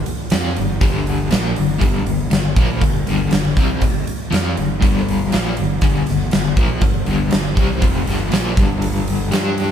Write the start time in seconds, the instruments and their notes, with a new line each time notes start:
0.06 muted overdriven electric guitar stroke, muted fingered electric bass stroke, open hi-hat
0.30 fingered electric bass F2, overdriven electric guitar F3 C4 F4, snare, open hi-hat
0.57 fingered electric bass G1, overdriven electric guitar G2 D3, open hi-hat
0.81 fingered electric bass G1, overdriven electric guitar G2 D3 G3, kick, open hi-hat
1.07 open hi-hat
1.31 fingered electric bass A#1, overdriven electric guitar A#2 F3 A#3, snare, open hi-hat
1.55 fingered electric bass G1, overdriven electric guitar G2 D3, open hi-hat
1.79 fingered electric bass G1, overdriven electric guitar G2 D3 G3, kick, open hi-hat
2.05 fingered electric bass G1, overdriven electric guitar G2 D3, open hi-hat
2.30 fingered electric bass G1, overdriven electric guitar G2 D3, snare, open hi-hat
2.56 fingered electric bass A#1, overdriven electric guitar A#2 F3 A#3, kick, open hi-hat
2.81 fingered electric bass G1, overdriven electric guitar G2 D3, kick, open hi-hat
3.07 fingered electric bass G1, overdriven electric guitar G2 D3 G3, open hi-hat
3.31 fingered electric bass G1, overdriven electric guitar G2 D3, snare, open hi-hat
3.57 fingered electric bass C2, overdriven electric guitar C3 G3 C4, kick, open hi-hat
3.81 fingered electric bass G1, overdriven electric guitar G2 D3, kick, open hi-hat
4.06 muted overdriven electric guitar stroke, muted fingered electric bass stroke, open hi-hat
4.31 fingered electric bass F2, overdriven electric guitar F3 C4 F4, snare, open hi-hat
4.57 fingered electric bass G1, overdriven electric guitar G2 D3, open hi-hat
4.81 fingered electric bass G1, overdriven electric guitar G2 D3 G3, kick, open hi-hat
5.09 open hi-hat
5.32 fingered electric bass A#1, overdriven electric guitar A#2 F3 A#3, snare, open hi-hat
5.56 fingered electric bass G1, overdriven electric guitar G2 D3, open hi-hat
5.81 fingered electric bass G1, overdriven electric guitar G2 D3 G3, kick, open hi-hat
6.07 fingered electric bass G1, overdriven electric guitar G2 D3, snare, open hi-hat
6.31 fingered electric bass G1, overdriven electric guitar G2 D3, snare, open hi-hat
6.57 fingered electric bass A#1, overdriven electric guitar A#2 F3 A#3, kick, open hi-hat
6.81 fingered electric bass G1, overdriven electric guitar G2 D3, kick, open hi-hat
7.06 fingered electric bass G1, overdriven electric guitar G2 D3 G3, open hi-hat
7.31 fingered electric bass G1, overdriven electric guitar G2 D3, snare, open hi-hat
7.55 fingered electric bass C2, overdriven electric guitar C3 G3 C4, kick, open hi-hat
7.79 fingered electric bass F1, overdriven electric guitar F2 C3 F3, kick, open hi-hat
8.05 fingered electric bass G1, overdriven electric guitar G2 D3 G3, snare, open hi-hat
8.32 fingered electric bass A#1, overdriven electric guitar A#2 F3 A#3, snare, open hi-hat
8.56 fingered electric bass G1, overdriven electric guitar G2 D3 G3, kick, open hi-hat
8.82 open hi-hat
9.08 open hi-hat
9.31 fingered electric bass G2, overdriven electric guitar G3 D4 G4, snare, open hi-hat
9.58 open hi-hat